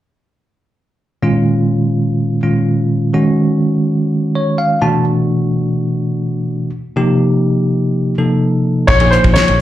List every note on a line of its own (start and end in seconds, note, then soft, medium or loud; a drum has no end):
1.23 2.40 A#2 medium
1.23 2.40 D#3 soft
1.23 2.40 G#3 soft
1.23 2.40 C#4 soft
1.23 2.40 F4 medium
2.43 3.14 A#2 soft
2.43 3.13 D#3 soft
2.43 3.13 G#3 soft
2.43 3.13 C#4 soft
2.43 3.14 F4 soft
3.14 4.78 D#3 medium
3.14 4.78 G#3 medium
3.14 4.78 C#4 soft
3.14 4.78 F#4 medium
4.35 4.57 C#5 medium
4.58 4.80 F5 medium
4.81 6.69 B2 medium
4.81 6.69 E3 medium
4.81 6.70 A3 medium
4.81 6.70 D4 medium
4.81 6.70 F#4 medium
4.81 5.04 A5 medium
6.96 8.14 C3 medium
6.96 8.14 F3 medium
6.96 8.14 A#3 medium
6.96 8.14 D#4 soft
6.96 8.14 G4 medium
8.18 8.89 C3 soft
8.18 8.89 F3 soft
8.18 8.89 A#3 soft
8.18 8.90 D#4 soft
8.18 8.89 A4 soft
8.87 9.17 A#1 medium
8.87 9.13 C#5 medium
8.87 kick medium
8.87 crash medium
9.00 9.53 F3 medium
9.00 9.53 A#3 medium
9.00 9.53 D#4 medium
9.00 9.53 G#4 medium
9.00 ride soft
9.11 9.36 C5 medium
9.11 hi-hat pedal medium
9.24 9.34 A#1 medium
9.24 kick medium
9.24 ride medium
9.34 9.61 C#5 medium
9.34 snare loud
9.34 hi-hat pedal medium
9.34 ride medium
9.48 9.61 A#1 medium
9.48 ride medium